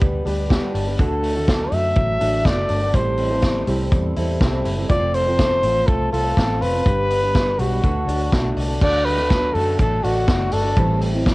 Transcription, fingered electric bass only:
0, 0, Header, 1, 2, 480
1, 0, Start_track
1, 0, Tempo, 488998
1, 967, Time_signature, 4, 2, 24, 8
1, 11138, End_track
2, 0, Start_track
2, 0, Title_t, "Fingered electric bass"
2, 0, Program_c, 0, 33
2, 16, Note_on_c, 0, 38, 99
2, 216, Note_off_c, 0, 38, 0
2, 251, Note_on_c, 0, 38, 94
2, 555, Note_off_c, 0, 38, 0
2, 731, Note_on_c, 0, 31, 106
2, 933, Note_off_c, 0, 31, 0
2, 971, Note_on_c, 0, 38, 109
2, 1653, Note_off_c, 0, 38, 0
2, 1686, Note_on_c, 0, 42, 92
2, 1891, Note_off_c, 0, 42, 0
2, 1928, Note_on_c, 0, 33, 93
2, 2131, Note_off_c, 0, 33, 0
2, 2171, Note_on_c, 0, 33, 89
2, 2373, Note_off_c, 0, 33, 0
2, 2403, Note_on_c, 0, 30, 82
2, 2609, Note_off_c, 0, 30, 0
2, 2649, Note_on_c, 0, 31, 99
2, 2852, Note_off_c, 0, 31, 0
2, 2886, Note_on_c, 0, 33, 109
2, 3570, Note_off_c, 0, 33, 0
2, 3606, Note_on_c, 0, 36, 96
2, 3811, Note_off_c, 0, 36, 0
2, 3847, Note_on_c, 0, 40, 86
2, 4051, Note_off_c, 0, 40, 0
2, 4093, Note_on_c, 0, 40, 83
2, 4295, Note_off_c, 0, 40, 0
2, 4324, Note_on_c, 0, 36, 88
2, 4530, Note_off_c, 0, 36, 0
2, 4567, Note_on_c, 0, 30, 90
2, 4772, Note_off_c, 0, 30, 0
2, 4807, Note_on_c, 0, 29, 115
2, 5492, Note_off_c, 0, 29, 0
2, 5528, Note_on_c, 0, 33, 97
2, 5732, Note_off_c, 0, 33, 0
2, 5771, Note_on_c, 0, 36, 104
2, 5974, Note_off_c, 0, 36, 0
2, 6012, Note_on_c, 0, 36, 84
2, 6215, Note_off_c, 0, 36, 0
2, 6255, Note_on_c, 0, 33, 98
2, 6484, Note_on_c, 0, 29, 94
2, 6499, Note_off_c, 0, 33, 0
2, 6690, Note_off_c, 0, 29, 0
2, 6734, Note_on_c, 0, 31, 103
2, 7416, Note_off_c, 0, 31, 0
2, 7450, Note_on_c, 0, 35, 92
2, 7654, Note_off_c, 0, 35, 0
2, 7692, Note_on_c, 0, 38, 95
2, 7896, Note_off_c, 0, 38, 0
2, 7924, Note_on_c, 0, 38, 83
2, 8131, Note_off_c, 0, 38, 0
2, 8169, Note_on_c, 0, 35, 86
2, 8374, Note_off_c, 0, 35, 0
2, 8409, Note_on_c, 0, 36, 94
2, 8614, Note_off_c, 0, 36, 0
2, 8651, Note_on_c, 0, 38, 104
2, 9335, Note_off_c, 0, 38, 0
2, 9373, Note_on_c, 0, 42, 91
2, 9576, Note_off_c, 0, 42, 0
2, 9609, Note_on_c, 0, 33, 102
2, 9814, Note_off_c, 0, 33, 0
2, 9855, Note_on_c, 0, 33, 85
2, 10058, Note_off_c, 0, 33, 0
2, 10092, Note_on_c, 0, 30, 89
2, 10296, Note_off_c, 0, 30, 0
2, 10336, Note_on_c, 0, 31, 94
2, 10538, Note_off_c, 0, 31, 0
2, 10568, Note_on_c, 0, 33, 113
2, 11138, Note_off_c, 0, 33, 0
2, 11138, End_track
0, 0, End_of_file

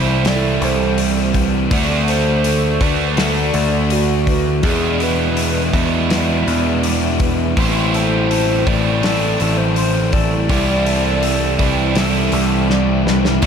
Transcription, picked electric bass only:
0, 0, Header, 1, 2, 480
1, 0, Start_track
1, 0, Tempo, 732601
1, 1120, Time_signature, 4, 2, 24, 8
1, 8821, End_track
2, 0, Start_track
2, 0, Title_t, "Picked electric bass"
2, 0, Program_c, 0, 34
2, 0, Note_on_c, 0, 36, 82
2, 376, Note_off_c, 0, 36, 0
2, 402, Note_on_c, 0, 36, 87
2, 1095, Note_off_c, 0, 36, 0
2, 1123, Note_on_c, 0, 38, 88
2, 1815, Note_off_c, 0, 38, 0
2, 1841, Note_on_c, 0, 38, 81
2, 2294, Note_off_c, 0, 38, 0
2, 2321, Note_on_c, 0, 38, 89
2, 3013, Note_off_c, 0, 38, 0
2, 3036, Note_on_c, 0, 40, 99
2, 3731, Note_off_c, 0, 40, 0
2, 3758, Note_on_c, 0, 40, 83
2, 4211, Note_off_c, 0, 40, 0
2, 4240, Note_on_c, 0, 40, 90
2, 4933, Note_off_c, 0, 40, 0
2, 4962, Note_on_c, 0, 33, 97
2, 5654, Note_off_c, 0, 33, 0
2, 5680, Note_on_c, 0, 33, 82
2, 6133, Note_off_c, 0, 33, 0
2, 6163, Note_on_c, 0, 33, 94
2, 6855, Note_off_c, 0, 33, 0
2, 6875, Note_on_c, 0, 36, 96
2, 7571, Note_off_c, 0, 36, 0
2, 7597, Note_on_c, 0, 36, 85
2, 8052, Note_off_c, 0, 36, 0
2, 8077, Note_on_c, 0, 36, 88
2, 8773, Note_off_c, 0, 36, 0
2, 8796, Note_on_c, 0, 38, 99
2, 8821, Note_off_c, 0, 38, 0
2, 8821, End_track
0, 0, End_of_file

